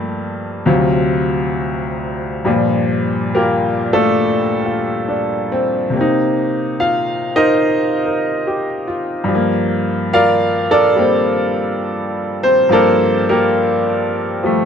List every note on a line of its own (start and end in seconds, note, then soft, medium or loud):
0.00 0.67 G2 soft
0.00 0.67 F3 soft
0.00 0.67 A3 soft
0.00 0.68 A#3 medium
0.66 2.46 D2 medium
0.66 2.47 C3 soft
0.66 2.47 F#3 soft
0.66 2.47 F4 medium
2.45 5.94 G2 soft
2.45 5.95 A#2 medium
2.45 5.95 F3 soft
2.45 5.95 G3 soft
3.35 3.89 A#3 soft
3.35 3.89 F4 soft
3.35 3.89 G4 soft
3.35 3.89 A#4 medium
3.93 4.76 A3 medium
3.93 4.76 D4 medium
3.93 4.64 F4 medium
3.93 4.76 A4 medium
4.66 5.27 F4 soft
5.08 5.77 D4 soft
5.52 5.96 C4 medium
5.90 9.28 C3 soft
5.90 9.30 A#3 soft
5.97 9.31 C4 soft
5.97 7.34 D#4 medium
6.80 7.32 F4 medium
6.80 7.32 F5 medium
7.36 8.16 D#4 soft
7.36 8.04 A#4 medium
7.36 8.16 C5 medium
7.36 8.16 D#5 medium
8.05 8.64 A#4 soft
8.47 9.13 G4 soft
8.88 9.46 F4 soft
9.24 12.68 G2 medium
9.24 12.68 F3 soft
9.35 10.95 A#3 medium
10.13 10.66 F4 medium
10.13 10.66 A#4 medium
10.13 10.66 D5 medium
10.13 10.66 F5 medium
10.71 11.52 D4 medium
10.71 11.52 A4 medium
10.71 11.52 A#4 medium
10.71 11.52 D5 medium
10.96 12.70 G3 soft
10.96 12.69 A#3 soft
10.96 12.42 C4 medium
12.43 12.71 C4 medium
12.43 12.71 C5 medium
12.69 14.65 G2 soft
12.69 14.42 F3 soft
12.69 13.28 A#3 soft
12.69 13.26 D4 medium
12.69 13.26 A4 medium
12.69 13.26 A#4 medium
12.69 13.25 D5 medium
13.29 14.61 A#3 medium
13.29 14.62 F4 medium
13.29 14.62 G4 medium
13.29 14.61 A#4 medium
14.43 14.65 F3 soft
14.43 14.65 G3 soft
14.43 14.65 A3 soft